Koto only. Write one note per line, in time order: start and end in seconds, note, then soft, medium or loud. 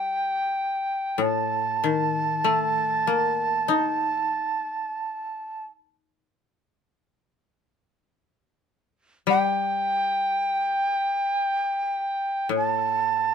0.00 2.45 G3 medium
1.18 4.56 A2 soft
1.84 4.33 D#3 soft
2.44 4.96 A3 soft
3.07 5.62 A#3 soft
3.68 6.26 D#4 soft
9.27 12.65 G3 soft
12.49 13.34 A2 soft